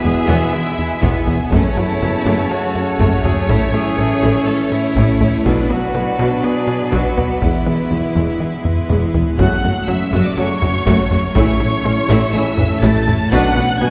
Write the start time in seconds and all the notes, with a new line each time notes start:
Already playing: B2 G#3 B3 E4 G#4 B4 E5 G#5
0.04 E1 E2 G#3 E4 G#4
0.28 E1 E2 E3 B3
0.53 E3 E4
0.79 E2
1.02 E1 E2 E3 B3, taiko
1.27 E1 E2 E3 B3, taiko low
1.51 F#1 F#2 C#3 F#3 A3 C#4 A4 C#5 A5, taiko
1.76 F#1 F#2 F#3 A3 C#4 E4
2.00 F#1 F#2 F#3 F#4
2.25 F#1 F#2 F#3 A3
2.51 F#3 A3 F#4
2.75 F#2
2.99 F#1 F#2 F#3 A3, taiko
3.24 F#1 F#2 F#3 A3 C#4 G#4, taiko low
3.48 A1 A2 E3 A3 C#4 E4 E5, taiko
3.73 A1 A2 A3 E4 G#4
3.98 A1 A2 E3 A4
4.22 A1 A2 A3
4.47 A3 A4
4.72 A2 E4
4.96 A1 A2 A3, taiko
5.20 A1 A2 A3 E4, taiko low
5.44 B1 B2 F#3 B3 D4 B4 D5, taiko
5.69 B1 B2 F#3 B3 F#4
5.94 B1 B2 D3 B4
6.18 B1 B2 F#3 B3
6.43 B3 G#4
6.67 B2
6.92 B1 B2 F#3 B3 F#4, taiko
7.17 B1 B2 F#3 B3 F#4, taiko low
7.42 E1 E2 E3 G#3 E4 B4 E5, taiko
7.66 E1 E2 E3 G#3 B3
7.91 E1 E2 E3 E4
8.16 E1 E2 E3 G#3
8.40 E3
8.65 E2, taiko low-mid
8.89 E1 E2 E3 G#3, taiko low-mid
9.14 E1 E2 E3 G#3 B3, taiko low
9.38 F#1 F#2 C#3 F#3 A3 C#4 F#4 C#5 F#5 F#6, taiko
9.63 F#1 F#2 A3 F#4
9.88 F#1 F#2 F#3 C#4 E5 E6
10.12 F#1 F#2 F#3 A3 F#4
10.25 D5 D6
10.36 F#1 F#2 C#3 F#3 A3 C#4 F#4 C#5 C#6
10.62 F#1 F#2 F#3 C#4 F#4, taiko low-mid
10.86 F#1 F#2 F#3 A3 F#4, taiko
11.11 F#1 F#2 A3 F#4, taiko low-mid
11.34 A1 A2 C#3 E3 A3 C#4 E4 C#5 C#6, taiko
11.60 A1 A2 A3 C#4 E4
11.85 A1 A2 E3 A3 C#4 E4
12.09 A1 A2 A3 E4
12.34 A1 A2 C#3 E3 A3 C#4 E4 E5 E6
12.57 A1 A2 E3 C#4 A4, taiko low-mid
12.82 A1 A2 A3 E4 A5 A6, taiko
13.07 A1 A2 A3 C#4 E4, taiko low-mid
13.32 B1 B2 F#3 B3 D4 B4 F#5 F#6, taiko
13.56 B1 B2 D4 B4
13.81 B1 B2 B3 F#4 G#5 G#6